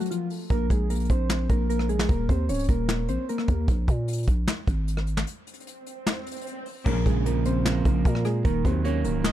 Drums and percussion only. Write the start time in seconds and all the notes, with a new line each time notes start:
0.01 closed hi-hat
0.06 closed hi-hat
0.11 closed hi-hat
0.30 open hi-hat
0.50 kick, closed hi-hat
0.70 kick, closed hi-hat
0.90 closed hi-hat
0.95 closed hi-hat
1.00 closed hi-hat
1.05 closed hi-hat
1.10 kick, closed hi-hat
1.30 snare, clap
1.49 kick, closed hi-hat
1.70 closed hi-hat
1.79 cross-stick
1.89 closed hi-hat
1.99 snare, clap
2.09 kick, closed hi-hat
2.29 kick, closed hi-hat
2.49 closed hi-hat
2.54 closed hi-hat
2.59 closed hi-hat
2.64 closed hi-hat
2.69 kick, closed hi-hat
2.89 snare, clap
3.08 closed hi-hat
3.29 closed hi-hat
3.38 cross-stick
3.48 kick, closed hi-hat
3.68 kick, closed hi-hat
3.88 kick, closed hi-hat
4.08 closed hi-hat
4.13 closed hi-hat
4.18 closed hi-hat
4.23 closed hi-hat
4.28 kick, closed hi-hat
4.47 snare, clap
4.67 kick, closed hi-hat
4.88 closed hi-hat
4.97 cross-stick
5.07 closed hi-hat
5.17 snare, clap
5.27 closed hi-hat
5.47 closed hi-hat
5.54 closed hi-hat
5.60 closed hi-hat
5.67 closed hi-hat
5.86 closed hi-hat
6.07 snare, clap
6.26 closed hi-hat
6.31 closed hi-hat
6.36 closed hi-hat
6.41 closed hi-hat
6.47 closed hi-hat
6.66 open hi-hat
6.86 kick, crash
7.06 kick, closed hi-hat
7.26 closed hi-hat
7.45 closed hi-hat
7.65 snare, clap
7.85 kick, closed hi-hat
8.05 kick, closed hi-hat
8.15 cross-stick
8.25 cross-stick, closed hi-hat
8.45 kick, closed hi-hat
8.65 kick, closed hi-hat
8.85 closed hi-hat
9.04 closed hi-hat
9.24 snare, clap